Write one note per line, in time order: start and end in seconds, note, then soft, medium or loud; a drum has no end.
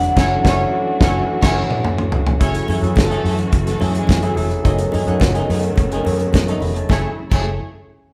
0.00 0.14 D3 medium
0.00 0.16 F#3 medium
0.00 2.37 F#3 medium
0.00 0.18 D4 medium
0.00 2.37 D4 medium
0.00 0.15 E4 loud
0.00 0.18 G#4 medium
0.00 0.19 B4 medium
0.00 0.18 C#5 medium
0.00 1.82 F#5 loud
0.00 muted clean electric guitar stroke soft
0.00 closed hi-hat medium
0.16 0.36 F#1 loud
0.16 2.39 E3 medium
0.16 0.35 F#3 loud
0.16 2.39 A3 medium
0.16 0.35 C#4 loud
0.16 0.36 C#4 loud
0.16 0.36 E4 loud
0.16 2.39 F#4 medium
0.16 0.36 A4 loud
0.16 0.36 C#5 loud
0.16 kick loud
0.16 snare loud
0.16 crash medium
0.44 0.64 F#1 loud
0.44 0.63 F#3 loud
0.44 0.63 C#4 loud
0.44 0.65 C#4 loud
0.44 0.63 E4 medium
0.44 0.64 E4 loud
0.44 0.64 A4 medium
0.44 0.64 A4 loud
0.44 0.64 C#5 loud
0.44 0.65 C#5 loud
0.44 kick loud
0.44 snare loud
1.01 1.20 F#1 loud
1.01 1.20 F#3 loud
1.01 1.20 C#4 medium
1.01 1.20 C#4 loud
1.01 1.20 E4 loud
1.01 1.20 E4 medium
1.01 1.20 A4 loud
1.01 1.20 C#5 loud
1.01 1.21 C#5 loud
1.01 kick loud
1.01 snare loud
1.42 1.62 F#1 loud
1.42 1.62 F#3 loud
1.42 1.62 C#4 loud
1.42 1.62 C#4 medium
1.42 1.62 E4 medium
1.42 1.62 A4 medium
1.42 1.63 A4 medium
1.42 1.61 C#5 loud
1.42 kick loud
1.42 snare loud
1.42 crash medium
1.70 mid tom medium
1.85 mid tom loud
1.98 mid tom medium
2.12 floor tom loud
2.27 floor tom loud
2.39 2.59 F#1 loud
2.39 4.63 E3 medium
2.39 2.67 F#3 medium
2.39 6.86 F#3 medium
2.39 2.56 A3 loud
2.39 4.63 C#4 medium
2.39 2.64 C#4 loud
2.39 2.67 E4 medium
2.39 2.55 E4 medium
2.39 4.63 F#4 medium
2.39 2.67 G#4 medium
2.39 2.54 G#4 loud
2.39 2.67 A4 loud
2.39 2.63 C#5 loud
2.39 kick loud
2.39 closed hi-hat medium
2.54 muted clean electric guitar stroke soft
2.54 closed hi-hat medium
2.68 2.78 F#2 loud
2.68 2.80 A3 medium
2.68 2.81 E4 medium
2.68 2.81 G#4 medium
2.68 open hi-hat medium
2.68 muted conga medium
2.81 2.92 F#2 medium
2.81 3.45 F#3 medium
2.81 2.95 A3 soft
2.81 2.94 B3 medium
2.81 3.45 E4 medium
2.81 2.95 E4 medium
2.81 3.45 F#4 medium
2.81 2.94 G#4 medium
2.81 3.45 A4 medium
2.81 2.95 B4 medium
2.81 closed hi-hat soft
2.96 3.15 F#1 loud
2.96 3.50 A3 loud
2.96 3.50 A4 loud
2.96 muted clean electric guitar stroke soft
2.96 kick loud
2.96 snare loud
2.96 closed hi-hat medium
2.96 high conga loud
3.11 3.23 A3 medium
3.11 3.24 E4 medium
3.11 3.25 G#4 loud
3.11 closed hi-hat soft
3.24 3.43 F#2 loud
3.24 3.36 A3 medium
3.24 3.37 E4 medium
3.24 3.37 G#4 medium
3.24 open hi-hat medium
3.39 muted clean electric guitar stroke soft
3.39 closed hi-hat soft
3.52 3.72 F#1 loud
3.52 muted clean electric guitar stroke soft
3.52 kick loud
3.52 closed hi-hat medium
3.67 3.78 A3 medium
3.67 3.78 A4 loud
3.67 muted clean electric guitar stroke soft
3.67 snare soft
3.67 closed hi-hat medium
3.80 4.00 F#2 loud
3.80 4.07 F#3 medium
3.80 3.96 A3 medium
3.80 4.08 E4 medium
3.80 3.94 E4 medium
3.80 4.08 G#4 medium
3.80 3.93 G#4 loud
3.80 4.08 A4 loud
3.80 open hi-hat medium
3.80 muted conga medium
3.80 low conga medium
3.94 4.34 G#3 medium
3.94 4.34 G#4 medium
3.94 muted clean electric guitar stroke medium
3.94 closed hi-hat medium
4.07 4.28 F#2 medium
4.07 muted clean electric guitar stroke soft
4.07 kick loud
4.07 snare loud
4.07 closed hi-hat medium
4.07 high conga medium
4.22 4.31 F#3 medium
4.22 4.36 A3 medium
4.22 4.32 E4 medium
4.22 4.37 E4 medium
4.22 4.37 G#4 medium
4.22 4.32 G#4 medium
4.22 4.32 A4 loud
4.22 closed hi-hat soft
4.35 4.55 F1 medium
4.35 4.54 F#3 medium
4.35 4.54 E4 medium
4.35 4.54 G#4 medium
4.35 4.55 A4 loud
4.35 muted clean electric guitar stroke soft
4.35 open hi-hat medium
4.35 high conga medium
4.50 muted clean electric guitar stroke soft
4.50 closed hi-hat soft
4.64 4.84 F#1 loud
4.64 6.88 C#3 medium
4.64 6.88 D#3 medium
4.64 4.91 F#3 medium
4.64 4.80 A3 medium
4.64 6.88 A3 medium
4.64 6.88 B3 medium
4.64 4.79 D#4 medium
4.64 4.91 F#4 medium
4.64 4.92 G#4 medium
4.64 4.78 G#4 medium
4.64 4.92 A4 medium
4.64 4.92 C#5 medium
4.64 4.92 D#5 loud
4.64 kick loud
4.64 closed hi-hat medium
4.78 muted clean electric guitar stroke soft
4.78 closed hi-hat medium
4.92 5.03 F#2 medium
4.92 5.04 A3 medium
4.92 5.05 D#4 medium
4.92 5.05 G#4 medium
4.92 open hi-hat medium
4.92 muted conga medium
5.07 5.16 F#2 medium
5.07 5.69 F#3 medium
5.07 5.20 A3 medium
5.07 5.19 D#4 medium
5.07 5.69 F#4 medium
5.07 5.69 G#4 medium
5.07 5.19 G#4 medium
5.07 5.70 A4 medium
5.07 5.70 C#5 medium
5.07 5.70 F#5 medium
5.07 closed hi-hat soft
5.20 5.40 F#1 loud
5.20 muted clean electric guitar stroke soft
5.20 kick loud
5.20 snare loud
5.20 closed hi-hat medium
5.20 high conga medium
5.35 5.48 A3 medium
5.35 5.49 D#4 medium
5.35 5.50 G#4 medium
5.35 closed hi-hat soft
5.49 5.68 F#2 medium
5.49 5.61 A3 medium
5.49 5.62 D#4 medium
5.49 5.62 G#4 medium
5.49 5.75 B4 medium
5.49 open hi-hat medium
5.63 muted clean electric guitar stroke soft
5.63 closed hi-hat soft
5.76 5.96 F#1 loud
5.76 6.05 C#5 medium
5.76 muted clean electric guitar stroke soft
5.76 kick loud
5.76 closed hi-hat medium
5.76 muted conga soft
5.92 6.05 A3 medium
5.92 6.06 D#4 medium
5.92 6.07 G#4 medium
5.92 closed hi-hat medium
6.05 6.24 F#2 loud
6.05 6.32 F#3 medium
6.05 6.32 F#4 medium
6.05 6.32 G#4 medium
6.05 6.32 A4 medium
6.05 6.32 C#5 medium
6.05 6.33 D#5 medium
6.05 muted clean electric guitar stroke soft
6.05 open hi-hat medium
6.05 muted conga medium
6.20 muted clean electric guitar stroke soft
6.20 closed hi-hat soft
6.33 6.53 F#2 loud
6.33 6.47 D#5 medium
6.33 muted clean electric guitar stroke soft
6.33 kick loud
6.33 snare loud
6.33 closed hi-hat medium
6.33 high conga medium
6.47 6.62 A3 medium
6.47 6.62 D#4 medium
6.47 6.63 A4 medium
6.47 6.86 E5 medium
6.47 6.61 C#6 medium
6.47 closed hi-hat medium
6.60 6.80 F1 medium
6.60 6.75 D#5 medium
6.60 6.75 B5 medium
6.60 muted clean electric guitar stroke soft
6.60 open hi-hat medium
6.60 high conga medium
6.76 7.03 C#5 medium
6.76 7.02 A5 medium
6.76 muted clean electric guitar stroke soft
6.76 closed hi-hat soft
6.89 7.05 F#1 medium
6.89 7.16 C#3 medium
6.89 7.05 F#3 medium
6.89 7.16 F#3 medium
6.89 7.16 G#3 medium
6.89 7.06 A3 medium
6.89 7.16 A3 medium
6.89 7.07 A3 medium
6.89 7.05 E4 medium
6.89 7.16 E4 medium
6.89 7.07 E4 medium
6.89 7.05 G#4 medium
6.89 7.06 G#4 medium
6.89 7.07 G#4 loud
6.89 7.05 A4 medium
6.89 7.05 C#5 loud
6.89 kick loud
6.89 snare medium
6.89 muted conga medium
7.31 7.57 F#1 loud
7.31 7.57 F#3 medium
7.31 7.58 A3 medium
7.31 7.49 A3 medium
7.31 7.58 E4 medium
7.31 7.49 E4 medium
7.31 7.58 G#4 medium
7.31 7.49 G#4 medium
7.31 7.58 A4 medium
7.31 7.58 C#5 medium
7.31 kick loud
7.31 crash medium
7.31 muted conga medium